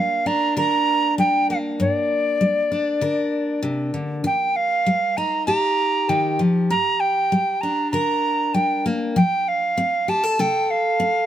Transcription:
0.00 0.51 G3 medium
0.00 1.50 A#3 medium
0.00 0.26 D4 medium
0.00 0.57 A#4 medium
0.00 0.28 F5 loud
0.26 2.70 D4 medium
0.26 0.57 A#5 loud
0.57 1.12 D3 medium
0.57 3.02 A#4 medium
0.57 1.15 A#5 loud
1.18 1.73 G3 medium
1.18 1.47 G5 loud
1.50 5.00 A#3 medium
1.50 1.57 F5 medium
1.80 2.35 G2 medium
1.80 3.60 D5 loud
2.41 2.96 G3 medium
2.72 4.25 D4 medium
3.01 3.57 D3 medium
3.01 5.47 A#4 medium
3.63 3.93 C3 medium
3.94 4.24 D3 medium
4.24 4.80 D#3 medium
4.24 4.58 G5 medium
4.56 5.19 F5 medium
4.86 5.42 G3 medium
5.17 6.67 D#4 medium
5.17 5.46 A#5 loud
5.46 6.03 A#2 medium
5.46 7.93 G4 medium
5.46 6.11 A#5 loud
6.09 6.40 D#3 medium
6.09 6.40 G5 medium
6.39 6.70 F3 medium
6.70 7.26 G2 medium
6.70 7.02 A#5 loud
7.00 7.62 G5 loud
7.32 7.87 G3 medium
7.61 9.16 D4 medium
7.61 7.91 A#5 loud
7.91 8.48 D3 medium
7.91 9.13 A#4 medium
7.91 8.56 A#5 loud
8.54 9.10 G3 medium
8.54 8.85 G5 medium
8.86 9.16 A#3 medium
9.16 9.71 F3 medium
9.16 9.50 G5 loud
9.48 10.11 F5 loud
9.78 10.33 C4 medium
10.08 10.23 G4 medium
10.08 10.42 A5 loud
10.23 10.38 A4 medium
10.39 10.94 C3 medium
10.39 11.26 A4 medium
10.39 10.72 G5 loud
10.70 11.26 F5 loud
11.00 11.26 C4 medium

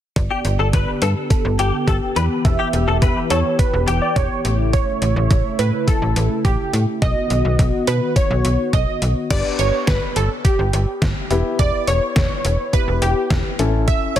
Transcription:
0.16 0.29 G1 loud
0.16 2.14 D3 medium
0.16 4.41 B3 medium
0.16 4.41 G4 medium
0.16 0.98 D5 loud
0.16 kick loud
0.16 closed hi-hat medium
0.31 0.39 G4 medium
0.45 0.57 G1 medium
0.45 closed hi-hat medium
0.59 0.72 G1 medium
0.59 0.67 A4 medium
0.73 0.86 G1 loud
0.73 0.90 B4 medium
0.73 kick loud
0.73 closed hi-hat medium
1.02 1.14 G2 loud
1.02 1.10 A4 medium
1.02 1.15 B4 medium
1.02 closed hi-hat medium
1.30 1.84 A4 loud
1.30 kick loud
1.30 closed hi-hat medium
1.45 1.57 G1 loud
1.59 1.72 G1 medium
1.59 1.75 G4 medium
1.59 closed hi-hat medium
1.88 2.00 G1 loud
1.88 2.27 G4 medium
1.88 1.96 A4 medium
1.88 kick loud
1.88 closed hi-hat medium
2.16 2.29 E2 medium
2.16 4.43 E3 medium
2.16 2.24 B4 medium
2.16 closed hi-hat medium
2.45 2.57 E1 loud
2.45 3.27 E5 loud
2.45 kick loud
2.45 closed hi-hat medium
2.59 2.67 G4 medium
2.73 2.86 E1 loud
2.73 closed hi-hat medium
2.88 3.00 E1 loud
2.88 2.96 A4 medium
3.02 3.14 E1 medium
3.02 3.18 B4 medium
3.02 kick loud
3.02 closed hi-hat medium
3.30 3.43 E2 loud
3.30 3.39 A4 medium
3.30 3.57 C#5 loud
3.30 closed hi-hat medium
3.59 3.99 B4 loud
3.59 kick loud
3.59 closed hi-hat medium
3.73 3.86 E1 loud
3.88 4.00 E1 medium
3.88 4.28 G4 medium
3.88 closed hi-hat medium
4.02 4.17 D5 medium
4.16 4.29 E1 loud
4.16 4.56 C#5 loud
4.16 kick loud
4.16 closed hi-hat medium
4.45 4.82 A1 medium
4.45 6.99 C#3 medium
4.45 6.99 A3 medium
4.45 6.99 E4 medium
4.45 closed hi-hat medium
4.73 5.62 C#5 loud
4.73 kick loud
4.73 closed hi-hat medium
5.02 5.14 A1 loud
5.02 closed hi-hat medium
5.16 5.29 A1 loud
5.31 5.43 A1 medium
5.31 kick loud
5.31 closed hi-hat medium
5.59 5.72 A2 medium
5.59 5.88 B4 medium
5.59 closed hi-hat medium
5.88 6.41 A4 medium
5.88 kick loud
5.88 closed hi-hat medium
6.02 6.14 A1 medium
6.16 6.29 A1 loud
6.16 closed hi-hat medium
6.45 6.57 A1 loud
6.45 6.85 G4 medium
6.45 kick loud
6.45 closed hi-hat medium
6.73 6.86 A2 loud
6.73 closed hi-hat medium
7.02 7.14 B1 loud
7.02 9.28 D#3 medium
7.02 9.28 B3 medium
7.02 9.28 F#4 medium
7.02 7.90 D#5 loud
7.02 kick loud
7.02 closed hi-hat medium
7.30 7.43 B1 medium
7.30 closed hi-hat medium
7.45 7.57 B1 medium
7.59 7.72 B1 loud
7.59 kick loud
7.59 closed hi-hat medium
7.87 8.00 B2 loud
7.87 8.14 B4 medium
7.87 closed hi-hat medium
8.16 8.75 C#5 loud
8.16 kick loud
8.16 closed hi-hat medium
8.31 8.43 B1 loud
8.45 8.57 B1 medium
8.45 closed hi-hat medium
8.73 8.86 B1 loud
8.73 9.13 D#5 medium
8.73 kick loud
8.73 closed hi-hat medium
9.02 9.14 B1 loud
9.02 closed hi-hat medium
9.30 9.43 G1 loud
9.30 11.27 B3 medium
9.30 11.27 D4 medium
9.30 11.27 G4 medium
9.30 9.60 D5 loud
9.30 kick loud
9.30 closed hi-hat medium
9.30 crash medium
9.59 9.72 G1 medium
9.59 9.89 C#5 loud
9.59 closed hi-hat medium
9.87 10.00 G1 loud
9.87 10.17 B4 loud
9.87 kick loud
9.87 snare loud
9.87 closed hi-hat medium
10.16 10.29 G1 medium
10.16 10.29 A4 medium
10.16 closed hi-hat medium
10.45 11.27 G4 medium
10.45 kick loud
10.45 closed hi-hat medium
10.59 10.72 G1 medium
10.73 10.86 G1 loud
10.73 closed hi-hat medium
11.02 11.14 G1 loud
11.02 kick loud
11.02 snare loud
11.02 closed hi-hat medium
11.30 11.43 E1 loud
11.30 12.71 B3 medium
11.30 12.71 E4 medium
11.30 12.71 G4 medium
11.30 closed hi-hat medium
11.59 11.72 E1 loud
11.59 11.89 D5 loud
11.59 kick loud
11.59 closed hi-hat medium
11.87 12.00 E1 loud
11.87 12.76 C#5 loud
11.87 closed hi-hat medium
12.16 12.29 E1 loud
12.16 kick loud
12.16 snare loud
12.16 closed hi-hat medium
12.45 12.57 E1 medium
12.45 closed hi-hat medium
12.73 13.59 B3 soft
12.73 13.58 E4 soft
12.73 13.59 G4 medium
12.73 13.03 B4 loud
12.73 kick loud
12.73 closed hi-hat medium
12.88 13.00 E1 medium
13.02 13.14 E1 loud
13.02 13.55 G4 medium
13.02 closed hi-hat medium
13.30 13.43 E1 loud
13.30 kick loud
13.30 snare loud
13.30 closed hi-hat medium
13.59 13.97 A1 medium
13.59 14.20 C#4 medium
13.59 14.20 E4 medium
13.59 14.20 A4 medium
13.59 closed hi-hat medium
13.88 14.17 E5 loud
13.88 kick loud
13.88 closed hi-hat medium
14.16 14.20 A1 medium
14.16 14.20 C#5 loud
14.16 closed hi-hat medium

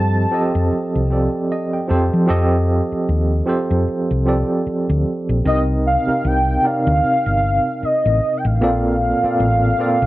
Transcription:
0.00 0.24 G2 medium
0.00 0.31 F3 medium
0.00 0.31 C4 medium
0.00 0.32 G4 medium
0.00 0.33 A4 medium
0.00 0.24 C5 medium
0.00 0.34 D#5 medium
0.00 1.51 A5 loud
0.31 0.98 F3 medium
0.31 0.98 C4 medium
0.31 0.98 G4 medium
0.31 0.99 A4 medium
0.31 0.99 D#5 medium
0.55 0.68 F2 medium
0.72 muted fingered electric bass stroke soft
0.95 1.27 C2 medium
1.10 1.77 F3 medium
1.10 1.77 C4 medium
1.10 1.78 G4 medium
1.10 1.78 A4 medium
1.10 1.78 D5 medium
1.52 1.72 D#5 medium
1.73 1.89 G5 medium
1.88 2.08 F2 medium
1.88 2.22 F3 medium
1.88 2.22 C4 medium
1.88 2.23 G4 medium
1.88 2.23 A4 medium
1.88 2.23 C5 loud
1.88 2.26 A5 medium
2.14 2.26 F3 medium
2.27 2.80 F2 loud
2.27 3.27 F3 loud
2.27 3.28 C4 medium
2.27 3.28 G4 medium
2.27 3.28 A4 medium
2.27 3.29 D#5 loud
2.92 muted fingered electric bass stroke soft
3.09 3.40 D#2 medium
3.46 4.13 F3 medium
3.46 4.13 C4 medium
3.46 4.14 G4 medium
3.46 4.14 A4 medium
3.46 4.15 C5 loud
3.71 3.84 F2 medium
3.88 muted fingered electric bass stroke soft
4.11 4.42 C2 medium
4.25 5.25 F3 medium
4.25 5.26 C4 medium
4.25 5.26 G4 medium
4.25 5.26 A4 medium
4.25 5.27 D5 medium
4.67 muted fingered electric bass stroke soft
4.90 5.03 D2 loud
5.29 5.42 A#1 medium
5.44 5.96 C2 loud
5.44 5.94 C3 medium
5.44 5.95 C4 medium
5.44 5.95 D#4 medium
5.44 5.95 A#4 medium
5.44 5.96 D#5 loud
5.44 5.62 D#5 medium
5.87 6.29 F5 medium
6.07 6.54 C3 medium
6.07 6.54 C4 medium
6.07 6.55 D#4 medium
6.07 6.55 A#4 medium
6.07 6.55 F5 medium
6.07 muted fingered electric bass stroke soft
6.25 6.56 C2 medium
6.25 6.67 G5 medium
6.63 7.93 C3 medium
6.63 7.94 C4 medium
6.63 7.94 D#4 medium
6.63 7.95 A#4 medium
6.63 7.95 D5 medium
6.63 7.86 F5 loud
6.87 7.00 D2 medium
7.03 muted fingered electric bass stroke soft
7.26 7.58 G1 medium
7.83 8.38 D#5 medium
7.83 muted fingered electric bass stroke medium
8.05 8.18 A1 medium
8.37 8.47 G5 medium
8.45 8.61 A1 medium
8.45 10.06 F5 loud
8.60 9.11 A#1 loud
8.60 9.10 A#2 loud
8.60 9.10 A#3 medium
8.60 9.11 C4 medium
8.60 9.11 F4 medium
8.60 9.11 A4 medium
8.60 9.12 D5 medium
9.22 9.69 A#2 medium
9.22 9.70 A#3 medium
9.22 9.70 C4 medium
9.22 9.70 F4 medium
9.22 9.71 A4 medium
9.22 9.71 D5 medium
9.22 muted fingered electric bass stroke soft
9.40 9.72 A1 medium
9.78 10.06 A#2 medium
9.78 10.06 A#3 medium
9.78 10.06 C4 medium
9.78 10.06 F4 medium
9.78 10.06 A4 medium
9.78 10.06 D5 loud
10.02 10.06 A#1 medium

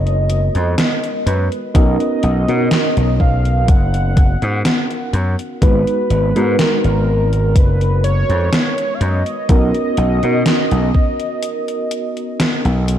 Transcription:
0.00 0.48 F#1 medium
0.00 1.77 G#3 medium
0.00 1.74 B3 medium
0.00 1.75 D#4 medium
0.00 1.75 F#4 medium
0.00 1.75 A#4 medium
0.00 1.26 D#5 loud
0.07 closed hi-hat soft
0.30 closed hi-hat medium
0.55 0.74 F2 loud
0.55 closed hi-hat soft
0.78 snare loud
0.78 closed hi-hat medium
1.03 closed hi-hat soft
1.26 1.48 F#2 medium
1.26 1.41 B4 medium
1.26 closed hi-hat medium
1.52 closed hi-hat soft
1.74 1.96 B1 loud
1.74 2.42 B3 medium
1.74 2.42 C#4 medium
1.74 2.43 D#4 medium
1.74 2.43 F#4 medium
1.74 2.43 A#4 medium
1.74 3.16 D#5 loud
1.74 kick loud
1.74 closed hi-hat medium
2.00 closed hi-hat soft
2.23 2.44 B1 medium
2.23 closed hi-hat medium
2.48 2.68 B2 loud
2.48 2.71 B3 medium
2.48 2.71 C#4 medium
2.48 2.71 D#4 medium
2.48 2.71 F#4 medium
2.48 2.71 A#4 medium
2.48 closed hi-hat soft
2.71 snare loud
2.71 closed hi-hat medium
2.97 3.68 B1 medium
2.97 closed hi-hat soft
3.20 3.70 F5 loud
3.20 kick medium
3.45 closed hi-hat soft
3.68 4.35 F#1 medium
3.68 5.14 F#5 loud
3.68 kick loud
3.68 closed hi-hat medium
3.94 closed hi-hat soft
4.17 kick loud
4.17 closed hi-hat medium
4.42 4.61 G#2 loud
4.42 closed hi-hat soft
4.65 snare loud
4.65 closed hi-hat medium
4.91 closed hi-hat soft
5.13 5.35 F#2 medium
5.13 closed hi-hat medium
5.39 closed hi-hat soft
5.62 5.83 G#1 loud
5.62 6.30 G#3 medium
5.62 6.30 B3 medium
5.62 6.30 D#4 medium
5.62 6.30 F#4 medium
5.62 6.60 B4 loud
5.62 6.30 B4 medium
5.62 kick loud
5.62 closed hi-hat medium
5.87 closed hi-hat soft
6.10 6.31 G#1 medium
6.10 closed hi-hat medium
6.35 6.55 G#2 medium
6.35 6.58 G#3 medium
6.35 6.58 B3 medium
6.35 6.59 D#4 medium
6.35 6.59 F#4 medium
6.35 6.59 A#4 medium
6.35 closed hi-hat soft
6.59 7.57 A#4 medium
6.59 snare loud
6.59 closed hi-hat medium
6.84 7.56 G#1 medium
6.84 closed hi-hat soft
7.33 closed hi-hat soft
7.56 8.23 F#1 medium
7.56 8.03 B4 loud
7.56 kick loud
7.56 closed hi-hat medium
7.81 closed hi-hat soft
8.04 8.96 C#5 loud
8.04 closed hi-hat medium
8.30 8.49 F2 loud
8.30 closed hi-hat soft
8.53 snare loud
8.53 closed hi-hat medium
8.78 closed hi-hat soft
8.94 9.02 F5 medium
9.01 9.22 F#2 medium
9.01 12.39 D#5 loud
9.01 closed hi-hat medium
9.26 closed hi-hat soft
9.49 9.70 B1 loud
9.49 10.17 B3 medium
9.49 10.17 C#4 medium
9.49 10.17 D#4 medium
9.49 10.17 F#4 medium
9.49 10.18 A#4 medium
9.49 kick loud
9.49 closed hi-hat medium
9.75 closed hi-hat soft
9.97 10.19 B1 medium
9.97 closed hi-hat medium
10.23 10.42 B2 medium
10.23 10.46 B3 medium
10.23 10.46 C#4 medium
10.23 10.46 D#4 medium
10.23 10.46 F#4 medium
10.23 10.46 A#4 medium
10.23 closed hi-hat soft
10.46 snare loud
10.46 closed hi-hat medium
10.71 10.90 B1 medium
10.71 closed hi-hat soft
10.94 kick medium
11.20 closed hi-hat soft
11.42 closed hi-hat medium
11.68 closed hi-hat soft
11.91 closed hi-hat medium
12.17 closed hi-hat soft
12.40 snare loud
12.40 closed hi-hat medium
12.65 12.98 B1 medium
12.65 closed hi-hat soft
12.88 closed hi-hat medium

